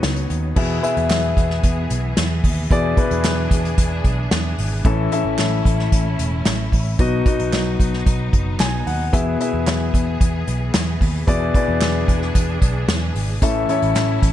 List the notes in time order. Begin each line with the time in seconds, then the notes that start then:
Already playing: D#3 F#3 B3 C#4 D#4 F#4 B4 C#5 D#5
0.03 C#2, snare, closed hi-hat
0.16 closed hi-hat
0.30 D#2, closed hi-hat
0.56 E2 B2 E3 B3 E4 G#4 E5, kick, crash
0.83 B3 E4 G#4 E5, closed hi-hat
0.97 E2, closed hi-hat
1.10 E2, snare, clap, closed hi-hat
1.37 E2, kick, closed hi-hat
1.50 snare
1.63 E2, kick, closed hi-hat
1.90 B1, closed hi-hat
2.17 E2, snare, clap, closed hi-hat
2.44 D#2, kick, open hi-hat
2.70 E2 B2 B3 D4 E4 G#4 D5, kick, closed hi-hat
2.97 B3 E4 G#4 B4, kick, closed hi-hat
3.11 E2, closed hi-hat
3.24 E2, snare, clap, closed hi-hat
3.51 E2, kick, closed hi-hat
3.65 closed hi-hat
3.78 E2, kick, closed hi-hat
4.04 B1, kick, closed hi-hat
4.31 E2, snare, clap, closed hi-hat
4.58 G#1, open hi-hat
4.84 A1 A2 E3 A3 C#4 E4 A4 E5, kick, closed hi-hat
5.12 C#4 E4 A4 E5, closed hi-hat
5.25 A1
5.38 A1, snare, clap, closed hi-hat
5.65 A1, kick, closed hi-hat
5.79 snare
5.92 A1, kick, closed hi-hat
6.19 E1, closed hi-hat
6.46 A1, snare, clap, closed hi-hat
6.72 A1, kick, open hi-hat
6.98 B1 B2 F#3 B3 D#4 F#4 D#5, kick, closed hi-hat
7.26 B3 D#4 F#4 D#5, kick, closed hi-hat
7.39 B1, closed hi-hat
7.53 B1, snare, clap, closed hi-hat
7.80 B1, kick, closed hi-hat
7.93 snare
8.06 B1, kick, closed hi-hat
8.33 F#1, kick, closed hi-hat
8.60 B1 G#5, snare, clap, closed hi-hat
8.86 D#2 F#5, open hi-hat
9.13 E2 B2 E3 B3 E4 G#4 E5, kick, closed hi-hat
9.40 B3 E4 G#4 E5, closed hi-hat
9.53 E2
9.67 E2, snare, clap, closed hi-hat
9.94 E2, kick, closed hi-hat
10.21 E2, kick, closed hi-hat
10.48 B1, closed hi-hat
10.74 E2, snare, clap, closed hi-hat
11.01 D#2, kick, open hi-hat
11.27 E2 B2 B3 D4 E4 G#4 D5, kick, closed hi-hat
11.54 B3 E4 G#4 D5, kick, closed hi-hat
11.68 E2
11.81 E2, snare, clap, closed hi-hat
12.08 E2, kick, closed hi-hat
12.22 snare
12.35 E2, kick, closed hi-hat
12.62 B1, kick, closed hi-hat
12.88 E2, snare, clap, closed hi-hat
13.15 G#1, open hi-hat
13.42 A1 A2 E3 A3 C#4 E4 A4 E5, kick, closed hi-hat
13.69 C#4 E4 A4 C#5, closed hi-hat
13.82 A1, closed hi-hat
13.95 A1, snare, clap, closed hi-hat
14.22 A1, kick, closed hi-hat